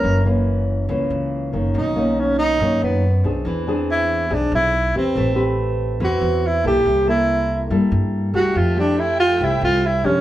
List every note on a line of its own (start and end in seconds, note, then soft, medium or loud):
0.00 0.85 F#1 medium
0.00 0.22 E3 soft
0.00 0.23 A#3 medium
0.00 0.23 C#4 medium
0.00 0.27 A#4 medium
0.04 0.87 F#2 medium
0.25 0.86 E3 medium
0.25 0.86 A#3 medium
0.25 0.86 C#4 medium
0.89 1.09 C#2 medium
0.89 1.72 C#3 soft
0.89 1.50 E3 medium
0.89 1.50 A#3 soft
0.89 1.50 C#4 medium
1.10 1.50 C#2 medium
1.53 1.73 F#1 medium
1.53 1.92 D#3 medium
1.53 1.93 A#3 medium
1.53 1.93 C#4 medium
1.74 2.56 B1 medium
1.74 2.57 B2 medium
1.74 2.21 D#4 medium
1.96 2.56 D#3 medium
1.96 2.57 A#3 medium
1.96 2.57 C#4 medium
2.20 2.38 C#4 medium
2.39 2.78 D#4 loud
2.60 2.80 F#2 medium
2.60 3.44 F#2 soft
2.60 3.03 D#3 soft
2.60 3.03 A#3 medium
2.60 3.03 C#4 medium
2.81 3.21 F#2 medium
2.81 3.42 B3 medium
3.24 3.44 B1 medium
3.24 3.63 C4 soft
3.24 3.63 D4 soft
3.24 3.64 G#4 medium
3.45 4.26 E2 medium
3.45 4.29 E3 medium
3.67 4.27 C4 medium
3.67 4.28 D4 medium
3.67 4.28 G#4 medium
3.91 4.35 E4 medium
4.30 4.50 B1 medium
4.30 4.73 C4 soft
4.30 4.73 D4 medium
4.30 4.53 D4 medium
4.30 4.73 G#4 medium
4.52 4.91 B1 medium
4.52 4.93 E4 medium
4.94 5.14 E2 medium
4.94 5.34 C4 medium
4.94 5.56 C4 medium
4.94 5.34 G4 medium
4.94 5.34 B4 medium
5.15 5.97 A1 medium
5.15 5.99 A3 medium
5.36 5.97 C4 medium
5.36 5.97 G4 medium
5.36 5.97 B4 medium
6.00 6.20 E2 medium
6.00 6.84 E3 medium
6.00 6.61 C4 medium
6.00 6.61 B4 medium
6.04 6.48 F#4 medium
6.21 6.61 E2 medium
6.47 6.66 E4 medium
6.64 6.84 B1 medium
6.64 7.04 A#3 soft
6.64 7.04 E4 soft
6.64 7.06 G4 loud
6.64 7.04 A4 medium
6.85 7.67 C2 medium
6.85 7.69 C3 medium
7.06 7.67 A#3 medium
7.06 7.67 E4 medium
7.06 7.68 E4 medium
7.06 7.67 A4 medium
7.70 7.90 G2 medium
7.70 8.54 G3 soft
7.70 8.31 A#3 soft
7.70 8.31 E4 soft
7.70 8.32 A4 medium
7.92 8.31 G2 medium
8.34 8.54 C2 medium
8.34 8.73 A3 medium
8.34 8.74 E4 medium
8.34 8.59 F#4 medium
8.34 8.74 G4 medium
8.53 9.37 F2 medium
8.53 9.38 F3 medium
8.53 10.21 A4 medium
8.53 10.21 E5 medium
8.53 10.21 G5 medium
8.57 8.78 F4 medium
8.77 9.37 A3 medium
8.77 9.01 D4 medium
8.77 9.37 E4 medium
8.77 9.38 G4 medium
9.00 9.19 E4 medium
9.20 9.45 F4 loud
9.40 9.61 C2 medium
9.40 10.21 C3 soft
9.40 9.83 A3 soft
9.40 9.83 E4 soft
9.40 9.64 E4 medium
9.40 9.84 G4 medium
9.61 10.01 C2 medium
9.61 9.88 F4 medium
9.86 10.07 E4 medium
10.03 10.21 F2 medium
10.03 10.21 G#3 medium
10.03 10.21 C#4 medium
10.03 10.21 D4 medium
10.03 10.21 G4 medium